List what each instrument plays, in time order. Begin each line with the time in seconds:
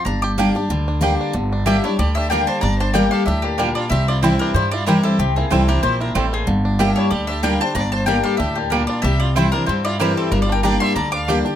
0.05 upright bass G1, steel-string acoustic guitar G2, five-string banjo D4, mandolin A#5
0.22 five-string banjo G4, mandolin D6
0.38 steel-string acoustic guitar G3 A#3 D4 G4, mandolin A#3 G4 D5 G5, five-string banjo D4
0.55 five-string banjo D4, steel-string acoustic guitar D4 G4
0.69 upright bass D2, steel-string acoustic guitar D3, five-string banjo G3
0.88 five-string banjo D4
1.01 steel-string acoustic guitar G3 A#3 D4 G4, mandolin A#3 G4 D5 G5, five-string banjo G4
1.21 five-string banjo D4
1.33 upright bass G1, steel-string acoustic guitar G2, five-string banjo D3
1.52 five-string banjo D4
1.66 steel-string acoustic guitar G3 A#3 D4 G4, mandolin A#3 G4 D5 E5 G5, fiddle G4, five-string banjo G4
1.83 five-string banjo D4, steel-string acoustic guitar D4 G4, fiddle E4, mandolin C#5
1.98 upright bass D2, steel-string acoustic guitar D3, five-string banjo G3, fiddle G4, mandolin D5
2.15 five-string banjo D4, fiddle G4, mandolin E5
2.29 steel-string acoustic guitar G3 A#3 D4 G4, five-string banjo G3, mandolin A#3 G4 D5 G5, fiddle A#4
2.47 five-string banjo D4, fiddle C5, mandolin A5
2.61 upright bass G1, steel-string acoustic guitar G2, five-string banjo D4, fiddle D5, mandolin A#5
2.78 five-string banjo D4, fiddle C5, mandolin A5
2.93 steel-string acoustic guitar G3 A#3 D4 G4, five-string banjo G3, mandolin A#3 G4 D5 G5, fiddle A#4
3.11 five-string banjo G4, fiddle A4, mandolin F5
3.26 upright bass D2, steel-string acoustic guitar A2, five-string banjo D4, fiddle G4, mandolin E5
3.42 fiddle A#3, five-string banjo D4, mandolin G4
3.58 steel-string acoustic guitar A#2, five-string banjo G3, mandolin A#3 G4 A#4 D5 G5, fiddle D4
3.75 five-string banjo D4, fiddle F4, mandolin D5
3.90 upright bass C2, steel-string acoustic guitar C3, five-string banjo C4, fiddle G4, mandolin E5
4.08 five-string banjo E4, fiddle F4, mandolin D5
4.22 steel-string acoustic guitar E3 G3 C4 E4, five-string banjo G3, mandolin C4 E4 C5 G5, fiddle E4
4.39 fiddle D4, five-string banjo G4, mandolin A#4
4.54 upright bass G2, steel-string acoustic guitar G2, five-string banjo G3, fiddle E4, mandolin C5
4.71 five-string banjo E4, fiddle F4, mandolin D5
4.86 steel-string acoustic guitar E3 G3 C4 E4, mandolin C4 E4 A#4 C5 G5, fiddle E4, five-string banjo G4
5.03 fiddle C4, five-string banjo E4, mandolin A4
5.19 upright bass C2, steel-string acoustic guitar C3, fiddle C4, five-string banjo C4, mandolin G4
5.36 fiddle A#3, five-string banjo E4, mandolin G#4
5.50 upright bass C2, steel-string acoustic guitar E3 G3 C4 E4, five-string banjo G3, mandolin C4 E4 A4 C5 G5, fiddle C4
5.68 steel-string acoustic guitar C4 E4, fiddle D4, five-string banjo G4, mandolin A#4
5.83 upright bass A#1, steel-string acoustic guitar A#2, five-string banjo C4, fiddle E4, mandolin C5
6.01 fiddle D4, five-string banjo E4, mandolin A#4
6.15 upright bass A1, steel-string acoustic guitar A2, five-string banjo G3, mandolin C4 E4 A4 C5 G5, fiddle C4
6.33 fiddle A#3, five-string banjo C4, mandolin G#4
6.47 upright bass G1, steel-string acoustic guitar G2, five-string banjo D3
6.65 five-string banjo D4
6.79 steel-string acoustic guitar G3 A#3 D4 G4, mandolin A#3 G4 D5 E5 G5, five-string banjo G4, fiddle G4
6.96 five-string banjo D4, fiddle E4, mandolin C#5
7.11 upright bass D2, steel-string acoustic guitar D3, five-string banjo G3, fiddle G4, mandolin D5
7.27 five-string banjo D4, fiddle G4, mandolin E5
7.43 steel-string acoustic guitar G3 A#3 D4 G4, five-string banjo G3, mandolin A#3 G4 D5 G5, fiddle A#4
7.61 five-string banjo D4, steel-string acoustic guitar D4 G4, fiddle C5, mandolin A5
7.75 upright bass G1, steel-string acoustic guitar G2, five-string banjo D4, fiddle D5, mandolin A#5
7.92 five-string banjo D4, fiddle C5, mandolin A5
8.06 steel-string acoustic guitar G3 A#3 D4 G4, five-string banjo G3, mandolin A#3 G4 D5 G5, fiddle A#4
8.24 five-string banjo G4, fiddle A4, mandolin F5
8.37 upright bass D2, steel-string acoustic guitar A2, five-string banjo D4, fiddle G4, mandolin E5
8.56 fiddle A#3, five-string banjo D4, mandolin G4
8.70 steel-string acoustic guitar A#2, five-string banjo G3, mandolin A#3 G4 A#4 D5 G5, fiddle D4
8.87 five-string banjo D4, fiddle F4, mandolin D5
9.02 upright bass C2, steel-string acoustic guitar C3, five-string banjo G3, fiddle G4, mandolin E5
9.20 fiddle F4, mandolin D5
9.36 steel-string acoustic guitar E3 G3 C4 E4, mandolin C4 E4 C5 G5, fiddle E4, five-string banjo E4
9.52 five-string banjo G3, steel-string acoustic guitar C4 E4, fiddle D4, mandolin A#4
9.66 upright bass G2, steel-string acoustic guitar G2, five-string banjo C4, fiddle E4, mandolin C5
9.85 five-string banjo E4, fiddle F4, mandolin D5
10.00 steel-string acoustic guitar E3 G3 C4 E4, mandolin C4 E4 A#4 C5 G5, fiddle E4, five-string banjo G4
10.17 five-string banjo C4, fiddle C4, mandolin A4
10.32 upright bass G1, steel-string acoustic guitar G2, five-string banjo G3, fiddle D4, mandolin A#4
10.42 fiddle F4, mandolin D5
10.49 five-string banjo D4, mandolin G5
10.54 fiddle A#4
10.63 steel-string acoustic guitar G3 A#3 D4 G4, mandolin A#3 G4 D5 G5 A#5, five-string banjo D4, fiddle D5
10.80 five-string banjo G3, fiddle E5, mandolin C6
10.96 upright bass D2, steel-string acoustic guitar D3, five-string banjo D4, fiddle D5, mandolin A#5
11.12 five-string banjo D4, fiddle F5, mandolin D6
11.28 steel-string acoustic guitar G3 A#3 D4 G4, mandolin A#3 G4 D5 G5, five-string banjo G4
11.45 five-string banjo D4, steel-string acoustic guitar D4 G4